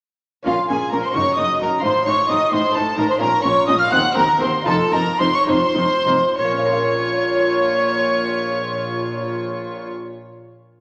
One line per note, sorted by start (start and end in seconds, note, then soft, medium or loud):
0.43 0.54 A#1 medium
0.43 0.55 A#2 medium
0.43 1.11 C#4 medium
0.43 0.55 C#4 medium
0.43 1.12 F4 medium
0.43 0.54 F4 medium
0.43 1.13 A#4 medium
0.43 0.68 F5 loud
0.47 0.68 A#2 medium
0.47 0.53 F5 medium
0.69 0.77 A#1 medium
0.69 0.90 A#2 medium
0.69 0.78 A#2 medium
0.69 0.77 C#4 medium
0.69 0.92 G#4 medium
0.69 0.92 G#5 medium
0.69 0.76 G#5 medium
0.90 1.00 A#1 medium
0.90 1.01 A#2 medium
0.90 1.13 A#2 medium
0.90 1.01 C#4 medium
0.90 1.03 A#4 medium
0.90 1.03 A#5 medium
0.90 0.98 A#5 medium
1.03 1.15 C5 medium
1.03 1.08 C6 medium
1.03 1.18 C6 medium
1.11 1.23 F#1 medium
1.11 1.78 D#4 soft
1.11 1.80 F#4 medium
1.11 1.81 A#4 medium
1.11 1.37 C#5 medium
1.11 1.36 C#6 loud
1.15 1.36 F#2 medium
1.15 1.24 F#2 medium
1.15 1.23 D#4 medium
1.15 1.40 C#6 medium
1.36 1.46 F#1 medium
1.36 1.46 F#2 medium
1.36 1.59 F#2 medium
1.36 1.46 D#4 medium
1.36 1.60 D#5 medium
1.36 1.59 D#6 medium
1.36 1.61 D#6 medium
1.59 1.68 F#1 medium
1.59 1.68 F#2 medium
1.59 1.82 F#2 medium
1.59 1.68 D#4 medium
1.59 1.69 A#4 medium
1.59 1.83 A#5 medium
1.59 1.84 A#5 medium
1.80 1.91 A2 medium
1.80 3.15 D#4 medium
1.80 3.16 F4 medium
1.80 3.16 C5 medium
1.80 2.06 C6 loud
1.84 1.92 A1 medium
1.84 2.05 A2 medium
1.84 1.92 D#4 medium
1.84 2.07 C5 medium
1.84 1.92 C6 medium
2.06 2.15 A1 medium
2.06 2.27 A2 medium
2.06 2.15 A2 medium
2.06 2.15 D#4 medium
2.06 2.29 C#5 medium
2.06 2.30 C#6 loud
2.06 2.31 C#6 medium
2.29 2.38 A1 medium
2.29 2.37 A2 medium
2.29 2.50 A2 medium
2.29 2.37 D#4 medium
2.29 2.52 D#5 medium
2.29 2.53 D#6 medium
2.29 2.54 D#6 medium
2.51 2.61 A1 medium
2.51 2.60 A2 medium
2.51 2.73 A2 medium
2.51 2.61 D#4 medium
2.51 2.75 C5 medium
2.51 2.74 C6 loud
2.51 2.77 C6 medium
2.75 2.84 A1 medium
2.75 2.83 A2 medium
2.75 2.96 A2 medium
2.75 2.84 D#4 medium
2.75 2.98 A4 medium
2.75 2.98 A5 loud
2.75 3.00 A5 medium
2.97 3.06 A1 medium
2.97 3.06 A2 medium
2.97 3.19 A2 medium
2.97 3.05 D#4 medium
2.97 3.09 A#4 medium
2.97 3.09 A#5 loud
2.97 3.09 A#5 medium
3.09 3.21 C5 medium
3.09 3.15 C6 medium
3.09 3.22 C6 medium
3.18 3.29 A#1 medium
3.18 3.87 C#4 medium
3.18 3.28 C#4 medium
3.18 3.89 F4 medium
3.18 3.43 A#4 medium
3.18 3.89 C#5 medium
3.18 3.43 A#5 medium
3.18 3.44 A#5 loud
3.22 3.42 A#2 medium
3.22 3.30 A#2 medium
3.43 3.53 A#1 medium
3.43 3.66 A#2 medium
3.43 3.53 A#2 medium
3.43 3.51 C#4 medium
3.43 3.67 C#5 medium
3.43 3.66 C#6 loud
3.43 3.68 C#6 loud
3.67 3.76 A#1 medium
3.67 3.76 A#2 medium
3.67 3.90 A#2 medium
3.67 3.75 C#4 medium
3.67 3.73 D#5 medium
3.67 3.78 D#6 loud
3.67 3.79 D#6 medium
3.79 3.91 F5 loud
3.79 3.85 F6 medium
3.79 3.84 F6 loud
3.87 3.99 C4 medium
3.87 4.61 D#4 medium
3.87 4.63 F#4 medium
3.87 4.64 C5 medium
3.87 4.15 F#6 loud
3.92 4.00 D#2 medium
3.92 4.14 D#2 medium
3.92 4.16 F#5 loud
3.92 3.98 F#6 loud
4.15 4.24 D#2 medium
4.15 4.39 D#2 medium
4.15 4.25 D#2 medium
4.15 4.23 C4 medium
4.15 4.41 A#4 medium
4.15 4.40 A#5 loud
4.15 4.40 A#5 medium
4.39 4.64 D#2 medium
4.39 4.49 D#2 medium
4.39 4.50 D#2 medium
4.39 4.47 C4 medium
4.39 4.50 C5 medium
4.39 4.68 C6 medium
4.39 4.66 C6 medium
4.62 6.31 D#4 medium
4.62 4.74 D#4 medium
4.62 6.32 F4 medium
4.62 6.33 A4 medium
4.62 4.73 A5 loud
4.66 4.75 F1 medium
4.66 4.74 F2 medium
4.66 4.90 F2 medium
4.66 4.92 A4 loud
4.66 4.94 A5 medium
4.92 5.01 F1 medium
4.92 5.01 F2 medium
4.92 5.17 F2 medium
4.92 5.00 D#4 medium
4.92 5.20 A#4 medium
4.92 5.19 A#5 loud
4.92 5.20 A#5 loud
5.19 5.28 F1 medium
5.19 5.45 F2 medium
5.19 5.28 F2 medium
5.19 5.27 D#4 medium
5.19 5.34 C5 medium
5.19 5.33 C6 loud
5.34 5.48 C#5 medium
5.34 5.47 C#6 medium
5.34 5.48 C#6 loud
5.46 5.56 F1 medium
5.46 5.74 F2 medium
5.46 5.56 F2 medium
5.46 5.54 D#4 medium
5.46 6.37 C5 loud
5.46 6.36 C6 medium
5.46 6.36 C6 loud
5.75 5.85 F1 medium
5.75 5.85 F2 medium
5.75 6.04 F2 medium
5.75 5.83 D#4 medium
6.05 6.15 F1 medium
6.05 6.15 F2 medium
6.05 6.35 F2 medium
6.05 6.13 D#4 medium
6.35 9.88 A#1 medium
6.35 9.88 A#2 medium
6.35 9.85 F4 medium
6.35 9.87 C#5 medium
6.35 9.88 C#5 medium
6.35 9.88 C#6 medium
6.44 9.94 A#3 medium
6.51 10.01 C#4 medium
6.59 10.09 F4 medium
6.65 6.72 A#4 medium
6.72 10.22 F5 medium